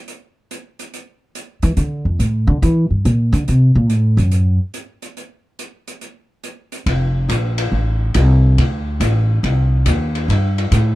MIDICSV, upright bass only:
0, 0, Header, 1, 2, 480
1, 0, Start_track
1, 0, Key_signature, -1, "major"
1, 0, Tempo, 425532
1, 79, Time_signature, 4, 2, 24, 8
1, 12353, End_track
2, 0, Start_track
2, 0, Title_t, "Upright bass"
2, 0, Program_c, 0, 32
2, 1838, Note_on_c, 0, 52, 94
2, 1989, Note_off_c, 0, 52, 0
2, 1995, Note_on_c, 0, 50, 83
2, 2307, Note_off_c, 0, 50, 0
2, 2313, Note_on_c, 0, 41, 62
2, 2468, Note_off_c, 0, 41, 0
2, 2473, Note_on_c, 0, 45, 73
2, 2786, Note_off_c, 0, 45, 0
2, 2790, Note_on_c, 0, 50, 96
2, 2946, Note_off_c, 0, 50, 0
2, 2959, Note_on_c, 0, 52, 99
2, 3269, Note_off_c, 0, 52, 0
2, 3275, Note_on_c, 0, 43, 47
2, 3428, Note_off_c, 0, 43, 0
2, 3443, Note_on_c, 0, 46, 81
2, 3744, Note_off_c, 0, 46, 0
2, 3751, Note_on_c, 0, 50, 101
2, 3905, Note_off_c, 0, 50, 0
2, 3930, Note_on_c, 0, 48, 75
2, 4227, Note_off_c, 0, 48, 0
2, 4234, Note_on_c, 0, 46, 81
2, 4394, Note_off_c, 0, 46, 0
2, 4394, Note_on_c, 0, 45, 77
2, 4699, Note_off_c, 0, 45, 0
2, 4706, Note_on_c, 0, 42, 82
2, 5154, Note_off_c, 0, 42, 0
2, 7741, Note_on_c, 0, 29, 74
2, 8209, Note_off_c, 0, 29, 0
2, 8218, Note_on_c, 0, 34, 85
2, 8689, Note_off_c, 0, 34, 0
2, 8704, Note_on_c, 0, 33, 78
2, 9172, Note_off_c, 0, 33, 0
2, 9194, Note_on_c, 0, 36, 96
2, 9658, Note_off_c, 0, 36, 0
2, 9674, Note_on_c, 0, 38, 77
2, 10139, Note_off_c, 0, 38, 0
2, 10153, Note_on_c, 0, 33, 86
2, 10619, Note_off_c, 0, 33, 0
2, 10639, Note_on_c, 0, 36, 84
2, 11102, Note_off_c, 0, 36, 0
2, 11122, Note_on_c, 0, 39, 90
2, 11585, Note_off_c, 0, 39, 0
2, 11598, Note_on_c, 0, 43, 79
2, 12064, Note_off_c, 0, 43, 0
2, 12087, Note_on_c, 0, 45, 89
2, 12353, Note_off_c, 0, 45, 0
2, 12353, End_track
0, 0, End_of_file